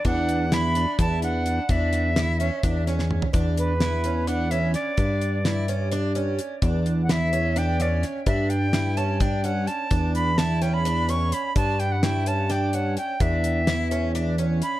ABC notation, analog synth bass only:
X:1
M:7/8
L:1/8
Q:1/4=128
K:Edor
V:1 name="Analog synth bass" clef=bass
E,,4 E,,3 | E,,4 E,,3 | E,,6- E,, | G,,6- G,, |
E,,6- E,, | G,,6- G,, | E,,6- E,, | G,,6- G,, |
E,,6- E,, |]